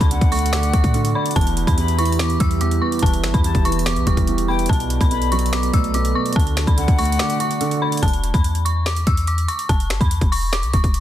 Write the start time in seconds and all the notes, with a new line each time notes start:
Already playing: D3 A3 D4 F#4 D5
0.01 D2 B5, kick, closed hi-hat
0.11 D3 F#5, closed hi-hat
0.21 D2, kick, closed hi-hat
0.32 A3 C#6, closed hi-hat, open hi-hat
0.39 closed hi-hat
0.46 closed hi-hat
0.53 D3 D6, finger snap, snare, closed hi-hat
0.63 closed hi-hat
0.73 D2 D4 C#6, kick, closed hi-hat
0.84 A2, kick, closed hi-hat
0.94 D3, closed hi-hat
1.05 closed hi-hat
1.15 D5 B5
1.26 closed hi-hat
1.31 closed hi-hat
1.36 E1 E2 B3 E4 G4 E5 A5, kick, closed hi-hat
1.41 closed hi-hat
1.47 closed hi-hat
1.57 closed hi-hat
1.67 E2 B5, kick, closed hi-hat
1.77 E2 B5, closed hi-hat
1.88 closed hi-hat
1.98 E3 C#6, closed hi-hat
2.06 closed hi-hat
2.12 closed hi-hat
2.19 E2 D6, finger snap, snare, closed hi-hat
2.30 closed hi-hat
2.40 E2 G3 E6, kick, closed hi-hat
2.51 closed hi-hat
2.61 E2 D6, closed hi-hat
2.71 closed hi-hat
2.81 B3 C#6
2.92 closed hi-hat
2.99 E1 E2 A5, kick, closed hi-hat
3.06 closed hi-hat
3.13 closed hi-hat
3.23 G1, finger snap, snare, closed hi-hat
3.34 E2 B5, kick, closed hi-hat
3.44 E2 A5, closed hi-hat
3.55 E1, kick, closed hi-hat
3.65 E3 C#6, closed hi-hat
3.72 closed hi-hat
3.79 closed hi-hat
3.86 E2 D6, finger snap, snare, closed hi-hat
3.96 B1, closed hi-hat
4.07 D1 G3 C#6, kick, closed hi-hat
4.17 E1, kick, closed hi-hat
4.27 E2, closed hi-hat
4.38 closed hi-hat
4.48 B3 G5 B5
4.59 closed hi-hat
4.66 B1 B2 B3 F#4 A4 D5 A5, kick, closed hi-hat
4.73 closed hi-hat
4.80 closed hi-hat
4.90 closed hi-hat
5.01 B1 B5, kick, closed hi-hat
5.11 B2 B5, closed hi-hat
5.22 closed hi-hat
5.32 F#3 C#6, closed hi-hat
5.39 closed hi-hat
5.46 closed hi-hat
5.53 B2 D6, finger snap, snare, closed hi-hat
5.63 closed hi-hat
5.73 B1 A3 E6, kick, closed hi-hat
5.84 closed hi-hat
5.94 B2 D6, closed hi-hat
6.05 closed hi-hat
6.15 B3 C#6
6.26 closed hi-hat
6.33 D2 D3 A3 D4 A5, kick, closed hi-hat
6.39 closed hi-hat
6.47 closed hi-hat
6.57 finger snap, snare, closed hi-hat
6.67 D2 B5, kick, closed hi-hat
6.78 D3 F#5, closed hi-hat
6.88 D2, kick, closed hi-hat
6.98 A3 C#6, closed hi-hat, open hi-hat
7.05 closed hi-hat
7.12 closed hi-hat
7.19 D3 D6, finger snap, snare, closed hi-hat
7.30 closed hi-hat
7.40 D4 C#6, closed hi-hat
7.51 closed hi-hat
7.61 D3, closed hi-hat
7.71 closed hi-hat
7.82 D5 B5
7.92 closed hi-hat
7.97 closed hi-hat
8.03 E1 A5, kick, closed hi-hat
8.08 closed hi-hat
8.13 closed hi-hat
8.24 closed hi-hat
8.34 E2 B5, kick, closed hi-hat
8.44 closed hi-hat
8.55 closed hi-hat
8.65 C#6, closed hi-hat
8.86 D6, finger snap, snare, closed hi-hat
8.96 closed hi-hat
9.07 E2 E6, kick, closed hi-hat
9.17 closed hi-hat
9.27 D6, closed hi-hat
9.38 closed hi-hat
9.48 C#6, closed hi-hat
9.59 closed hi-hat
9.69 E1 A5, kick, closed hi-hat
9.80 closed hi-hat
9.90 G1, finger snap, snare, closed hi-hat
10.01 E2 B5, kick, closed hi-hat
10.11 closed hi-hat
10.21 E1, kick, closed hi-hat
10.32 C#6, open hi-hat
10.53 D6, finger snap, snare, closed hi-hat
10.63 B1, closed hi-hat
10.73 D1 C#6, kick, closed hi-hat
10.84 E1, kick, closed hi-hat
10.94 closed hi-hat